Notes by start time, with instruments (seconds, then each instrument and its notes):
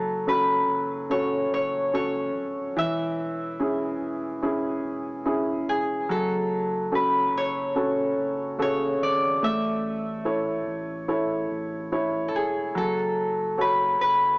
Already playing: sub bass F#1, grand piano F#3, harp A4
0.27 grand piano C#4 F#4 A4, harp B4
0.67 sub bass F#1
1.10 grand piano C#4 F#4 A4, harp C#5
1.51 sub bass F#1, harp C#5
1.94 grand piano C#4 F#4 A4, harp C#5
2.34 sub bass D1
2.76 sub bass E1, grand piano E3, harp E5
3.60 grand piano C#4 E4 G#4
4.01 sub bass E1
4.43 grand piano C#4 E4 G#4
4.84 sub bass E1
5.25 grand piano C#4 E4 G#4
5.67 sub bass E1, harp G#4
6.08 sub bass F#1, grand piano F#3, harp A4
6.92 grand piano C#4 F#4 A4, harp B4
7.33 sub bass F#1
7.37 harp C#5
7.75 grand piano C#4 F#4 A4
8.17 sub bass F#1
8.58 grand piano C#3 F#4 A4, harp C#5
9.00 sub bass G#1, harp D5
9.42 sub bass A1, grand piano A3, harp E5
10.25 grand piano E4 A4 C#5
10.67 sub bass A1
11.08 grand piano E4 A4 C#5
11.50 sub bass A1
11.92 grand piano E4 C#5
12.28 harp A4
12.33 sub bass E1, harp G#4
12.75 sub bass F#1, grand piano F#3, harp A4
13.58 grand piano F#4 A4 C#5, harp B4
14.00 sub bass F#1, harp B4